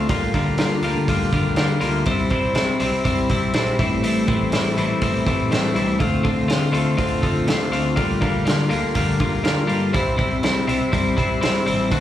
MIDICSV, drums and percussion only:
0, 0, Header, 1, 2, 480
1, 0, Start_track
1, 0, Tempo, 492611
1, 89, Time_signature, 4, 2, 24, 8
1, 11694, End_track
2, 0, Start_track
2, 0, Title_t, "Drums"
2, 86, Note_on_c, 9, 46, 60
2, 92, Note_on_c, 9, 36, 93
2, 183, Note_off_c, 9, 46, 0
2, 190, Note_off_c, 9, 36, 0
2, 332, Note_on_c, 9, 36, 72
2, 332, Note_on_c, 9, 46, 40
2, 430, Note_off_c, 9, 36, 0
2, 430, Note_off_c, 9, 46, 0
2, 561, Note_on_c, 9, 46, 57
2, 573, Note_on_c, 9, 38, 87
2, 659, Note_off_c, 9, 46, 0
2, 670, Note_off_c, 9, 38, 0
2, 803, Note_on_c, 9, 46, 41
2, 900, Note_off_c, 9, 46, 0
2, 1054, Note_on_c, 9, 36, 77
2, 1054, Note_on_c, 9, 46, 58
2, 1151, Note_off_c, 9, 36, 0
2, 1151, Note_off_c, 9, 46, 0
2, 1290, Note_on_c, 9, 46, 43
2, 1292, Note_on_c, 9, 36, 76
2, 1387, Note_off_c, 9, 46, 0
2, 1390, Note_off_c, 9, 36, 0
2, 1520, Note_on_c, 9, 46, 52
2, 1532, Note_on_c, 9, 38, 86
2, 1618, Note_off_c, 9, 46, 0
2, 1629, Note_off_c, 9, 38, 0
2, 1763, Note_on_c, 9, 46, 41
2, 1861, Note_off_c, 9, 46, 0
2, 2002, Note_on_c, 9, 46, 52
2, 2013, Note_on_c, 9, 36, 93
2, 2099, Note_off_c, 9, 46, 0
2, 2110, Note_off_c, 9, 36, 0
2, 2240, Note_on_c, 9, 46, 40
2, 2251, Note_on_c, 9, 36, 70
2, 2337, Note_off_c, 9, 46, 0
2, 2348, Note_off_c, 9, 36, 0
2, 2481, Note_on_c, 9, 46, 55
2, 2492, Note_on_c, 9, 38, 96
2, 2578, Note_off_c, 9, 46, 0
2, 2590, Note_off_c, 9, 38, 0
2, 2725, Note_on_c, 9, 46, 45
2, 2823, Note_off_c, 9, 46, 0
2, 2973, Note_on_c, 9, 46, 58
2, 2974, Note_on_c, 9, 36, 68
2, 3070, Note_off_c, 9, 46, 0
2, 3071, Note_off_c, 9, 36, 0
2, 3209, Note_on_c, 9, 46, 48
2, 3214, Note_on_c, 9, 36, 71
2, 3306, Note_off_c, 9, 46, 0
2, 3311, Note_off_c, 9, 36, 0
2, 3443, Note_on_c, 9, 46, 62
2, 3455, Note_on_c, 9, 38, 90
2, 3541, Note_off_c, 9, 46, 0
2, 3553, Note_off_c, 9, 38, 0
2, 3695, Note_on_c, 9, 36, 85
2, 3698, Note_on_c, 9, 46, 44
2, 3792, Note_off_c, 9, 36, 0
2, 3795, Note_off_c, 9, 46, 0
2, 3931, Note_on_c, 9, 46, 63
2, 4028, Note_off_c, 9, 46, 0
2, 4167, Note_on_c, 9, 46, 42
2, 4172, Note_on_c, 9, 36, 75
2, 4264, Note_off_c, 9, 46, 0
2, 4270, Note_off_c, 9, 36, 0
2, 4403, Note_on_c, 9, 46, 59
2, 4415, Note_on_c, 9, 38, 86
2, 4501, Note_off_c, 9, 46, 0
2, 4513, Note_off_c, 9, 38, 0
2, 4653, Note_on_c, 9, 46, 45
2, 4751, Note_off_c, 9, 46, 0
2, 4885, Note_on_c, 9, 46, 61
2, 4891, Note_on_c, 9, 36, 70
2, 4982, Note_off_c, 9, 46, 0
2, 4988, Note_off_c, 9, 36, 0
2, 5131, Note_on_c, 9, 36, 78
2, 5132, Note_on_c, 9, 46, 45
2, 5228, Note_off_c, 9, 36, 0
2, 5229, Note_off_c, 9, 46, 0
2, 5376, Note_on_c, 9, 46, 53
2, 5388, Note_on_c, 9, 38, 97
2, 5474, Note_off_c, 9, 46, 0
2, 5485, Note_off_c, 9, 38, 0
2, 5611, Note_on_c, 9, 46, 40
2, 5709, Note_off_c, 9, 46, 0
2, 5848, Note_on_c, 9, 46, 51
2, 5849, Note_on_c, 9, 36, 96
2, 5946, Note_off_c, 9, 36, 0
2, 5946, Note_off_c, 9, 46, 0
2, 6089, Note_on_c, 9, 36, 66
2, 6091, Note_on_c, 9, 46, 38
2, 6186, Note_off_c, 9, 36, 0
2, 6189, Note_off_c, 9, 46, 0
2, 6328, Note_on_c, 9, 46, 55
2, 6340, Note_on_c, 9, 38, 90
2, 6425, Note_off_c, 9, 46, 0
2, 6437, Note_off_c, 9, 38, 0
2, 6569, Note_on_c, 9, 46, 44
2, 6667, Note_off_c, 9, 46, 0
2, 6804, Note_on_c, 9, 46, 58
2, 6806, Note_on_c, 9, 36, 71
2, 6902, Note_off_c, 9, 46, 0
2, 6904, Note_off_c, 9, 36, 0
2, 7046, Note_on_c, 9, 36, 72
2, 7046, Note_on_c, 9, 46, 47
2, 7144, Note_off_c, 9, 36, 0
2, 7144, Note_off_c, 9, 46, 0
2, 7283, Note_on_c, 9, 46, 59
2, 7294, Note_on_c, 9, 38, 96
2, 7380, Note_off_c, 9, 46, 0
2, 7392, Note_off_c, 9, 38, 0
2, 7533, Note_on_c, 9, 46, 44
2, 7630, Note_off_c, 9, 46, 0
2, 7768, Note_on_c, 9, 36, 92
2, 7769, Note_on_c, 9, 46, 62
2, 7866, Note_off_c, 9, 36, 0
2, 7866, Note_off_c, 9, 46, 0
2, 8007, Note_on_c, 9, 46, 42
2, 8008, Note_on_c, 9, 36, 74
2, 8104, Note_off_c, 9, 46, 0
2, 8105, Note_off_c, 9, 36, 0
2, 8248, Note_on_c, 9, 46, 62
2, 8259, Note_on_c, 9, 38, 92
2, 8345, Note_off_c, 9, 46, 0
2, 8357, Note_off_c, 9, 38, 0
2, 8484, Note_on_c, 9, 46, 44
2, 8582, Note_off_c, 9, 46, 0
2, 8718, Note_on_c, 9, 46, 62
2, 8725, Note_on_c, 9, 36, 70
2, 8816, Note_off_c, 9, 46, 0
2, 8822, Note_off_c, 9, 36, 0
2, 8960, Note_on_c, 9, 46, 45
2, 8966, Note_on_c, 9, 36, 69
2, 9058, Note_off_c, 9, 46, 0
2, 9063, Note_off_c, 9, 36, 0
2, 9203, Note_on_c, 9, 46, 57
2, 9215, Note_on_c, 9, 38, 95
2, 9301, Note_off_c, 9, 46, 0
2, 9312, Note_off_c, 9, 38, 0
2, 9444, Note_on_c, 9, 46, 43
2, 9541, Note_off_c, 9, 46, 0
2, 9690, Note_on_c, 9, 36, 95
2, 9691, Note_on_c, 9, 46, 55
2, 9787, Note_off_c, 9, 36, 0
2, 9789, Note_off_c, 9, 46, 0
2, 9927, Note_on_c, 9, 46, 42
2, 9928, Note_on_c, 9, 36, 75
2, 10025, Note_off_c, 9, 36, 0
2, 10025, Note_off_c, 9, 46, 0
2, 10162, Note_on_c, 9, 46, 50
2, 10174, Note_on_c, 9, 38, 93
2, 10259, Note_off_c, 9, 46, 0
2, 10271, Note_off_c, 9, 38, 0
2, 10415, Note_on_c, 9, 46, 45
2, 10512, Note_off_c, 9, 46, 0
2, 10651, Note_on_c, 9, 36, 73
2, 10655, Note_on_c, 9, 46, 56
2, 10749, Note_off_c, 9, 36, 0
2, 10753, Note_off_c, 9, 46, 0
2, 10892, Note_on_c, 9, 36, 78
2, 10899, Note_on_c, 9, 46, 42
2, 10990, Note_off_c, 9, 36, 0
2, 10997, Note_off_c, 9, 46, 0
2, 11131, Note_on_c, 9, 46, 56
2, 11143, Note_on_c, 9, 38, 95
2, 11229, Note_off_c, 9, 46, 0
2, 11240, Note_off_c, 9, 38, 0
2, 11373, Note_on_c, 9, 46, 44
2, 11471, Note_off_c, 9, 46, 0
2, 11610, Note_on_c, 9, 36, 97
2, 11611, Note_on_c, 9, 46, 64
2, 11694, Note_off_c, 9, 36, 0
2, 11694, Note_off_c, 9, 46, 0
2, 11694, End_track
0, 0, End_of_file